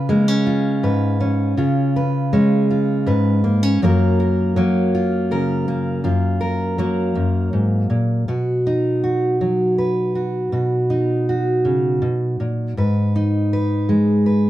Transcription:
Already playing: C#3 F4 B4
0.09 G#3 A#3
0.28 C#4
0.47 F4
0.83 G#2 B4
1.21 C#4
1.57 C#3 F4
1.96 B4
2.33 G#3 C#4
2.70 F4
3.06 G#2 B4
3.44 A#3
3.63 C#4
3.82 F#2 F#3 A#3 F4 A#4
4.20 A#4
4.56 F#3 A#3
4.95 F4
5.31 C#3 A#4
5.68 A#3
6.04 F#2 F4
6.41 A#4
6.78 F#3 A#3
7.15 F#2
7.53 G#2
7.90 A#2
8.28 B2 F#4
8.67 D#4
9.04 F#4
9.41 F#3
9.78 B4
10.15 F#4
10.52 B2 F#4
10.90 D#4
11.29 F#4
11.65 C#3
12.02 B2
12.40 A#2
12.77 G#2 B4
13.16 D#4
13.53 B4
13.89 G#3
14.26 B4

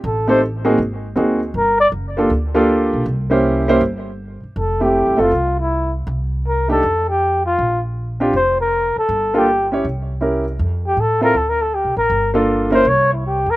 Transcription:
0.04 A1 A4
0.27 A3 C4 D#4 G4 A4 C5
0.65 A#3 C4 D#4 F#4 G#4
0.78 G#1
1.16 D2 A#3 C4 D#4 F#4 G#4
1.54 G1 A#4
1.80 D5
1.92 F#1
2.17 A#3 D4 F4 G4 A4
2.30 D2
2.55 A#3 D4 F4 G4 A4
2.93 B1
3.06 C2
3.30 A#3 C#4 E4 G4 C5
3.68 A#3 C#4 E4 G4 C5
3.81 G1
4.43 muted upright bass stroke
4.56 F1 A4
4.80 A3 C4 E4 G4
5.07 G1
5.17 F#1 A3 C4 E4 F4 A4
5.32 C2
5.60 E4
6.07 C2
6.47 A#4
6.68 A3 D4 D#4 G4 A4
6.83 F2
7.09 G4
7.46 F4
7.59 A#1
8.20 C4 D4 F4 G4
8.33 F1 C5
8.61 A#4
8.96 A4, muted upright bass stroke
9.09 G1
9.34 A#3 D4 F4 G4 A4
9.72 C#4 E4 G4 C#5
9.84 C2
10.21 C#4 E4 G4 A#4
10.59 F2
10.86 G4
10.97 A2 A4
11.21 C4 E4 F4 A4 A#4
11.35 D2 A4
11.49 A#4
11.62 A4
11.74 G4
11.85 C2
11.97 A1 A#4
12.10 G1
12.34 A#3 D4 F4 A4
12.70 A#3 C#4 E4 A#4 C5
12.85 C2 C#5
13.13 E4
13.26 G4
13.46 E2 A#4

